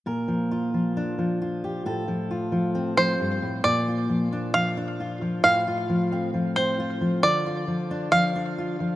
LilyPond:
<<
  \new Staff \with { instrumentName = "Five-string banjo" } { \time 4/4 \key bes \major \tempo 4 = 134 r1 | r2 r8 c''4. | d''4. r8 f''4. r8 | f''2 r8 c''4. |
d''4. r8 f''4. r8 | }
  \new Staff \with { instrumentName = "Steel-string acoustic guitar" } { \clef bass \time 4/4 \key bes \major << { bes'4 f'4 d'4 f'8 g'8 | a'4 f'4 c'2 | r8 f'4 d'4 d'8 f'4 | r8 f'4 c'4 c'8 f'4 |
r8 f'4 d'4 d'8 f'4 | } \\ { bes,8 f4 f4 f4. | a,8 f4 f4 f8 g,8 a,8 | bes,4 f4 f4. f8 | a,4 f4 f4. f8 |
d4 f4 f4. f8 | } >> }
>>